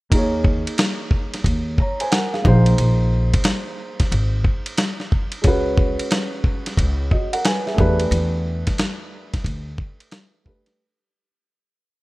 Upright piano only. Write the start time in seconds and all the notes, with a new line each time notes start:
0.10 A#3 D#4 G#4
0.16 C#5
1.80 C#5 A#5
2.01 C5 G#5
2.11 A#4 F#5
2.33 G#4 F5
2.42 A#3 D#4 G#4
2.48 C5
5.42 G#3 C#4
5.46 F#4 B4
7.12 F#4 D#5
7.33 A#4 F#5
7.45 B4 G#5
7.66 G#4 E5
7.74 A3 D4 G4
7.80 B4
10.44 A3 D4 G4 B4